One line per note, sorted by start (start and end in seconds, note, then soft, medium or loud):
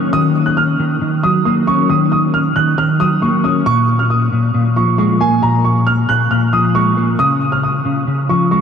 0.00 0.12 D#3 medium
0.00 0.57 F#3 medium
0.00 0.79 A#3 medium
0.00 1.01 C#4 medium
0.00 0.10 C#6 medium
0.13 0.78 D#3 loud
0.13 0.44 D#6 loud
0.46 0.56 F#6 medium
0.57 1.19 F6 medium
0.79 1.00 D#3 medium
1.01 1.88 D#3 medium
1.23 2.34 F#3 medium
1.23 1.43 D#6 medium
1.45 2.56 A#3 medium
1.45 1.65 D#6 medium
1.67 2.78 C#4 medium
1.67 1.87 C#6 medium
1.89 2.55 D#3 loud
1.89 2.09 D#6 medium
2.12 2.31 D#6 medium
2.34 2.53 F6 medium
2.56 2.77 D#3 medium
2.56 2.75 F#6 medium
2.78 3.66 D#3 medium
2.78 2.98 F6 medium
3.00 3.66 F#3 medium
3.00 3.19 D#6 loud
3.22 3.66 A#3 medium
3.22 3.41 C#6 medium
3.44 3.66 C#4 medium
3.44 3.64 D#6 medium
3.66 4.31 A#2 medium
3.66 3.97 C#6 loud
3.99 4.09 F6 medium
4.10 4.72 D#6 medium
4.32 4.53 A#2 medium
4.54 5.41 A#2 medium
4.76 5.87 F3 medium
4.76 4.96 C#6 medium
4.98 5.20 G#3 loud
4.98 5.18 C#6 medium
5.20 6.31 A#3 medium
5.20 5.40 G#5 medium
5.42 6.07 A#2 medium
5.42 5.62 A#5 medium
5.64 5.84 C#6 medium
5.87 6.06 F6 medium
6.09 6.30 A#2 medium
6.09 6.28 F#6 loud
6.31 7.19 A#2 medium
6.31 6.50 F6 medium
6.53 7.19 F3 medium
6.53 6.72 D#6 medium
6.75 6.96 G#3 medium
6.75 7.16 C#6 medium
6.97 7.19 A#3 medium
7.19 7.84 C#3 medium
7.19 7.50 D#6 loud
7.52 7.62 F6 medium
7.63 8.25 D#6 medium
7.85 8.06 C#3 medium
8.07 8.61 C#3 medium
8.29 8.61 F3 medium
8.29 8.49 C#6 medium
8.51 8.61 G#3 medium
8.51 8.61 C#6 medium